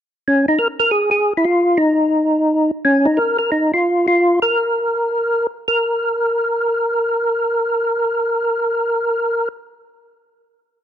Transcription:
tonewheel organ
0.28 C#4
0.48 D#4
0.59 A#4
0.80 A#4
0.91 G#4
1.11 G#4
1.37 E4
1.45 F4
1.78 D#4
2.85 C#4
3.05 D#4
3.17 A#4
3.39 A#4
3.52 D#4
3.74 F4
4.08 F4
4.42 A#4
5.68 A#4

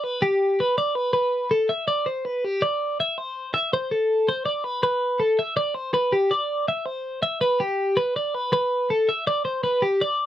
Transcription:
clean electric guitar
0.04 B4
0.22 G4
0.60 B4
0.78 D5
0.95 B4
1.13 B4
1.51 A4
1.69 E5
1.88 D5
2.06 C5
2.25 B4
2.45 G4
2.62 D5
3.00 E5
3.18 C5
3.54 E5
3.73 C5
3.91 A4
4.29 C5
4.46 D5
4.64 B4
4.83 B4
5.20 A4
5.39 E5
5.57 D5
5.75 C5
5.94 B4
6.13 G4
6.31 D5
6.68 E5
6.86 C5
7.23 E5
7.41 B4
7.60 G4
7.97 B4
8.16 D5
8.35 B4
8.53 B4
8.90 A4
9.09 E5
9.27 D5
9.45 C5
9.64 B4
9.82 G4
10.02 D5

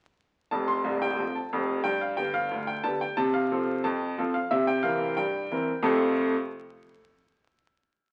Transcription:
grand piano
0.51 F1 F2 A5
0.68 C6
0.84 C1 C2
1.02 G5
1.19 F3 C4 A4
1.35 A5
1.53 F1 F2
1.84 G2 G5
2.01 F5
2.17 D3 B3 G4 G5
2.34 F5
2.51 D2
2.67 G5
2.84 D3 B3 G4 A5
3.01 G5
3.17 C3 A5
3.34 F5
3.51 F3 C4 A4
3.84 F2 A5
4.18 F3 C4 A4
4.34 F5
4.51 C3 E5
4.67 G5
4.83 E3 C4 A#4 F5
5.17 G2 G5
5.51 E3 C4 A#4
5.83 F2 C3 A3 C4 F4 A4 F5

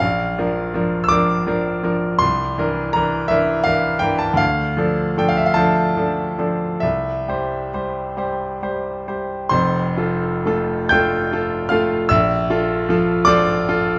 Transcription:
grand piano
0.00 A#1 F5
0.38 F3 D4 A#4
0.74 F3 D4 A#4
1.04 E6
1.08 F3 D4 A#4 D6
1.47 F3 D4 A#4
1.83 F3 D4 A#4
2.19 C2 C6
2.58 E3 D4 A#4
2.93 E3 D4 A#4 A#5
3.28 E3 D4 A#4 E5
3.64 E3 D4 A#4 F5
3.99 E3 D4 A#4 G5
4.19 A5
4.33 D2 F5
4.77 F3 D4 A4
5.18 F3 D4 A4 G5
5.29 F5
5.37 E5
5.46 F5
5.54 F3 D4 A4 A5
5.97 F3 D4 A4
6.38 F3 D4 A4
6.80 C2 E5
7.28 G3 G4 C5
7.74 G3 G4 C5
8.17 G3 G4 C5
8.62 G3 G4 C5
9.08 G3 G4 C5
9.49 F1 F2 C5 C6
9.97 F4 A4
10.45 A3 F4 A4
10.89 A3 F4 A4 G5 G6
11.33 F4 A4
11.69 A3 F4 A4 F5 F6
12.09 A#1 E5 E6
12.50 F4 A4
12.89 F3 F4 A4
13.25 F3 F4 A4 D5 D6
13.69 F4 A4

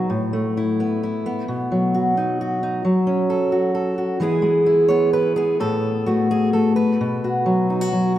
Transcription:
steel-string acoustic guitar
Already playing: B4
0.10 A2
0.33 A3
0.57 E4
0.80 B3
1.03 E4
1.26 B3
1.48 B2
1.72 F#3
1.94 F#4
2.17 D#4
2.41 F#4
2.63 D#4
2.85 F#3
3.07 C#4
3.30 A4
3.52 F#4
3.75 A4
3.98 F#4
4.20 E3 G#3 B3 E4 G#4
4.42 G#3
4.66 E4
4.88 B3 C#5
5.13 E4 B4
5.36 B3 G#4
5.60 A2 A4
6.06 A3 F#4
6.31 G#4
6.53 A3 A4
6.76 B4
7.01 B2
7.24 F#4
7.46 F#3
7.70 D#4
7.81 F#4
7.93 F#3

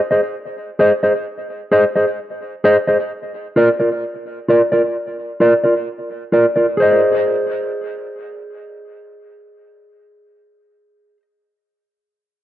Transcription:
clean electric guitar
0.11 G#4 C5 D#5
0.79 G#4 C5 D#5
1.03 G#4 C5 D#5
1.72 G#4 C5 D#5
1.96 G#4 C5 D#5
2.64 G#4 C5 D#5
2.87 G#4 C5 D#5
3.56 F4 A#4 D5
3.80 F4 A#4 D5
4.49 F4 A#4 D5
4.72 F4 A#4 D5
5.40 F4 A#4 D5
5.64 F4 A#4 D5
6.32 F4 A#4 D5
6.56 F4 A#4 D5
6.77 G#4 C5
6.82 D#5

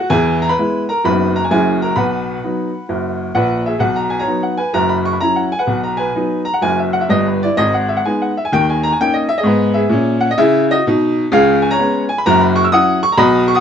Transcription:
grand piano
Already playing: F#4
0.10 E2 E3 G#4 G#5
0.42 A#5
0.49 B4 B5
0.58 G#3 B3 E4
0.89 A#4 A#5
1.04 F#1 F#2 F#3 B3 D#4 B4 B5
1.36 A#5
1.44 G#5
1.50 F#1 F#2 F#3 C#4 E4 G#4 G#5
1.82 A#4 A#5
1.92 A#5
1.96 B1 B2 B4 F#5 B5
2.44 F#3 B3 D#4
2.89 F#1 F#2
3.34 A#1 A#2 B4 F#5
3.66 G#4 E5
3.79 B1 B2 F#5
3.96 A#5
4.10 G#5
4.19 C#5 A#5
4.27 F#3 B3 D#4
4.43 F#5
4.57 B4 G#5
4.73 F#1 F#2 A#5
4.89 B5
5.05 C#6
5.13 B5
5.21 F#3 C#4 E4 A#5
5.36 F#5
5.52 G#5
5.59 B4 F#5
5.67 B1 B2
5.83 A#5
5.97 B4 G#5
6.15 F#3 B3 D#4
6.45 A#5
6.54 F#5
6.62 F#1 F#2 G#5
6.79 E5
6.93 F#5
7.01 E5
7.09 G1 G2 D#5
7.26 B4
7.43 E4 D5
7.57 G#1 G#2 D#5
7.74 F#5
7.89 E5
7.97 F#5
8.05 G#3 B3 D#4 G#5
8.22 F#5
8.37 E5
8.45 G#5
8.52 D#2 D#3 G5
8.70 G#5
8.83 A#5
8.92 G#5
9.00 A#3 C#4 D#4 G5
9.14 D#5
9.29 E5
9.38 G#4 D#5
9.43 G#2 B3
9.74 G#4 E5
9.89 A#2 C#4
10.21 F#5
10.31 D#5
10.38 C#3 E4 G#4 E5
10.71 F#4 D#5
10.87 B2 D#4
11.32 C#2 C#3 G#4 F5
11.62 G#5
11.71 C#5 A#5
11.79 G#3 B3 C#4
12.09 G#5
12.18 B5
12.26 F#1 F#2 A#5
12.41 B5
12.56 C#6
12.65 E6
12.72 F#3 C#4 E4 F#5 D#6
13.03 C#6
13.12 A#5
13.18 B1 B2 D#5 B5
13.48 C#6
13.55 F#5 D#6

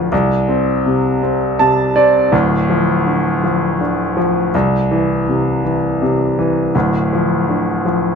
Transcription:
grand piano
Already playing: D3 F3
0.12 C2
0.48 C4
0.86 C3
1.23 C4
1.59 C3 A5
1.96 C4 D5
2.32 D1 D2
2.70 F3
3.07 D3
3.44 F3
3.81 D3
4.17 F3
4.54 C2
4.91 E3
5.29 C3
5.65 E3
6.02 C3
6.39 E3
6.75 D1 D2
7.13 F3
7.49 D3
7.85 F3

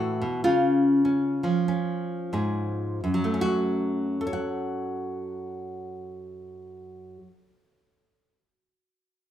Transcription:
nylon-string guitar
Already playing: A2 E3 C#4 E4 F#4
0.21 B2
0.44 C#3 F4
1.05 C#4
1.43 F3 C#4
1.68 C#4
2.33 G#2 G#4
3.04 F#2
3.14 F#3
3.24 A3
3.34 C#4
3.41 F#4
4.21 A4
4.27 C#5
4.33 F#5

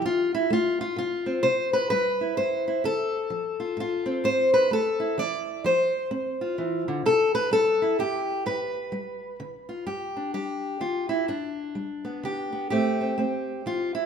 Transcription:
steel-string acoustic guitar
0.02 F3 F4
0.34 E4
0.50 A3 F4
0.81 F4
0.96 C3 F4
1.26 C4
1.43 C3 C5
1.73 B4
1.90 G3 B4
2.21 E4
2.37 G2 C5
2.68 E4
2.84 D3 A4
3.30 F3
3.60 F4
3.77 A2 F4
4.06 C4
4.24 A2 C5
4.54 B4
4.71 A3 A4
5.00 E4
5.18 E3 D5
5.64 F3 C5
6.11 C4
6.41 F4
6.58 E3
6.88 D3
7.06 C3 A4
7.35 B4
7.51 G3 A4
7.82 E4
7.99 G2 G4
8.46 G2 B4
8.92 G3
9.40 D3
9.69 F4
9.86 G2 G4
10.17 D4
10.34 G3 G4
10.80 D3 F4
11.09 E4
11.28 G2 D4
11.75 G3
12.05 B3
12.23 D3 G4
12.52 B3
12.70 A2 A3 C4 G4
13.01 C4
13.18 A3 C4
13.66 E3 F4
13.95 E4

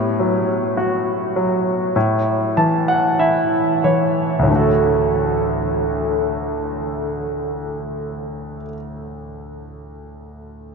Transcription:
grand piano
Already playing: A2
0.20 F#3
0.77 F#4
1.36 F#3
1.96 A2
2.57 E3 A5
2.88 F#5
3.19 E4 E5
3.84 E3 C#5
4.39 D2
4.43 A2
4.47 D3
4.51 A3
4.55 F#4
4.60 A4

